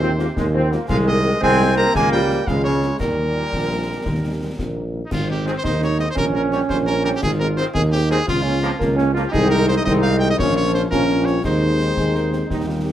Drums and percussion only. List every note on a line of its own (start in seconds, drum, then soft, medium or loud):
0.19 snare medium
0.37 concert bass drum medium
0.37 snare medium
0.72 snare medium
0.89 concert bass drum loud
0.89 snare medium
0.89 crash soft
1.43 concert bass drum medium
1.43 snare medium
1.95 concert bass drum loud
1.95 snare medium
2.30 snare medium
2.47 concert bass drum medium
2.47 snare medium
2.83 snare medium
3.00 concert bass drum loud
3.00 snare medium
3.00 crash soft
3.53 concert bass drum medium
3.53 snare medium
4.06 concert bass drum loud
4.06 snare medium
4.59 concert bass drum medium
4.59 snare medium
5.11 concert bass drum loud
5.11 snare medium
5.11 crash medium
5.46 snare medium
5.64 concert bass drum medium
5.64 snare medium
5.82 snare medium
5.99 snare medium
6.16 concert bass drum loud
6.16 snare medium
6.52 snare medium
6.69 concert bass drum medium
6.69 snare medium
6.87 snare medium
7.05 snare medium
7.23 concert bass drum loud
7.23 snare medium
7.23 crash soft
7.57 snare medium
7.75 concert bass drum medium
7.75 snare medium
7.93 snare medium
8.10 snare medium
8.28 concert bass drum loud
8.28 snare loud
8.63 snare medium
8.81 concert bass drum medium
8.81 snare medium
8.98 snare medium
9.16 snare medium
9.34 concert bass drum loud
9.34 snare medium
9.34 crash soft
9.69 snare medium
9.87 concert bass drum medium
9.87 snare medium
10.04 snare medium
10.22 snare medium
10.39 concert bass drum loud
10.39 snare loud
10.75 snare medium
10.92 concert bass drum medium
10.92 snare loud
11.09 snare medium
11.27 snare medium
11.44 concert bass drum medium
11.44 snare medium
11.44 crash soft
11.80 snare medium
11.97 concert bass drum medium
11.97 snare medium
12.15 snare medium
12.33 snare medium
12.50 concert bass drum loud
12.50 snare medium